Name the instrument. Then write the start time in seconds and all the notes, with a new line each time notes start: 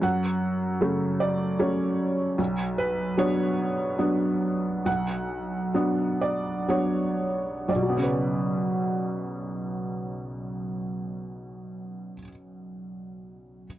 felt piano
0.02 F#2 F#5
0.81 C#3 F#3 A3
1.20 D5
1.59 F#3 A3 C#4 C#5
2.38 B1
2.78 B4
3.17 F#3 B3 D4 C#5
3.99 F#3 B3 D4
4.85 B1 F#5
5.74 F#3 B3 D4
6.21 D5
6.68 F#3 B3 D4 C#5
7.68 B1 D5
7.75 B2
7.83 F#3
7.90 B3
7.96 C#3
8.03 B4